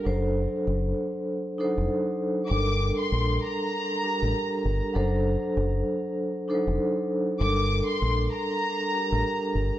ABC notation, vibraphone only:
X:1
M:4/4
L:1/16
Q:"Swing 16ths" 1/4=98
K:Gm
V:1 name="Vibraphone"
[^F,DAc]6 z4 [F,DEAc]4- [F,DEAc] z | [G,DAB]6 z4 [G,DGB]4- [G,DGB] z | [^F,DAc]6 z4 [F,DEAc]4- [F,DEAc] z | [G,DAB]6 z4 [G,DGB]4- [G,DGB] z |]